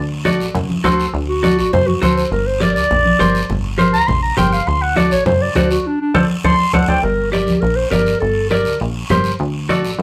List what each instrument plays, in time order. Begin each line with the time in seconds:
Already playing: analog synth bass D2
0.25 clean electric guitar F#4 A4 D5, high conga, short guiro
0.40 analog synth bass A1, short guiro
0.55 analog synth bass F#2, low conga, long guiro
0.70 high conga
0.84 analog synth bass D2, clean electric guitar F#4 A4 C5, high conga, short guiro
1.00 short guiro
1.14 analog synth bass D2, long guiro
1.28 clarinet F#4
1.43 clean electric guitar F#4 A4 D5, high conga, short guiro
1.58 analog synth bass A1, clarinet F#4, short guiro
1.73 analog synth bass F#2, clarinet C5, low conga, long guiro
1.87 clarinet F#4, high conga
2.01 analog synth bass D2, clean electric guitar F#4 A4 C5, clarinet C5, high conga, short guiro
2.16 clarinet C5, short guiro
2.32 analog synth bass G1, clarinet A#4, long guiro
2.46 clarinet C5
2.60 clean electric guitar G4 A#4 D5, clarinet D5, high conga, short guiro
2.75 analog synth bass D2, clarinet D5, short guiro
2.91 analog synth bass A#1, low conga, long guiro
3.06 high conga
3.19 analog synth bass G1, clean electric guitar G4 A#4 C5, high conga, short guiro
3.35 short guiro
3.50 analog synth bass G1, low conga, long guiro
3.78 clean electric guitar G4 A#4 C5, high conga, short guiro
3.93 analog synth bass D2, clarinet A#5, short guiro
4.07 analog synth bass A#1, clarinet C6, low conga, long guiro
4.22 clarinet A#5
4.37 analog synth bass G1, clean electric guitar G4 A#4 C5, clarinet G5, high conga, low conga, short guiro
4.53 clarinet F5, short guiro
4.67 analog synth bass D2, clarinet C6, long guiro
4.82 clarinet F#5
4.96 clean electric guitar F#4 A4 D5, clarinet D5, high conga, short guiro
5.11 analog synth bass A1, clarinet C#5, short guiro
5.26 analog synth bass F#2, clarinet C5, low conga, long guiro
5.42 clarinet D5
5.55 analog synth bass D2, clean electric guitar F#4 A4 D5, clarinet C5, high conga, short guiro
5.71 clarinet F#4, short guiro
5.86 clarinet D4
6.01 clarinet D4
6.14 analog synth bass D2, clean electric guitar A4 C5 D5, high conga, long guiro
6.44 analog synth bass D2, clean electric guitar A4 C5 D5, clarinet C6, high conga, long guiro
6.73 analog synth bass D2, clean electric guitar A4 C5 D5, clarinet F#5, high conga, long guiro
6.88 analog synth bass D2, clean electric guitar A4 C5 D5, clarinet G5, high conga, long guiro
7.03 analog synth bass G1, clarinet A#4, long guiro
7.32 clarinet G4, clean electric guitar G4 A#4 D5, high conga, short guiro
7.47 analog synth bass D2, high conga, short guiro
7.61 analog synth bass A#1, clarinet A#4, long guiro
7.76 clarinet C5
7.90 analog synth bass G1, clean electric guitar G4 A#4 D5, clarinet A#4, high conga, short guiro
8.06 short guiro
8.20 analog synth bass G1, clarinet A4, long guiro
8.50 clean electric guitar G4 A#4 D5, clarinet A#4, high conga, short guiro
8.65 analog synth bass D2, short guiro
8.80 analog synth bass A#1, long guiro
9.10 analog synth bass G1, clean electric guitar G4 A#4 C5, high conga, low conga, short guiro
9.24 short guiro
9.39 analog synth bass D2, long guiro
9.69 clean electric guitar F#4 A4 D5, high conga, short guiro
9.84 analog synth bass A1, short guiro
9.99 analog synth bass F#2